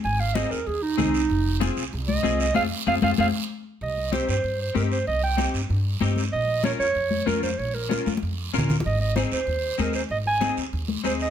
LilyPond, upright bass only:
\new Staff \with { instrumentName = "Upright bass" } { \clef bass \time 4/4 \key c \phrygian \tempo 4 = 191 aes,,4. ees,8 ees,4 c,4 | f,,4. c,8 c,4 c,4 | f,8 r8 f,8 f,8 f,8 r4. | c,4. g,8 g,4 g,4 |
c,4. g,8 g,4 g,4 | bes,,4. f,8 f,4 f,4 | bes,,4. f,8 f,4 bes,,4 | aes,,4. ees,8 ees,4 ees,4 |
aes,,4. ees,8 ees,4 ees,4 | }